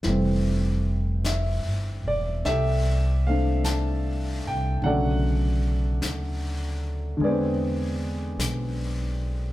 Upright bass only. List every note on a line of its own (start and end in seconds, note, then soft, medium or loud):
0.05 1.62 F1 medium
1.66 2.03 G1 soft
2.04 2.42 E1 medium
2.45 4.42 C2 medium
4.46 4.81 C2 medium
4.82 5.98 B1 medium
6.01 7.17 D2 medium
7.20 8.35 E2 medium
8.37 9.53 B1 medium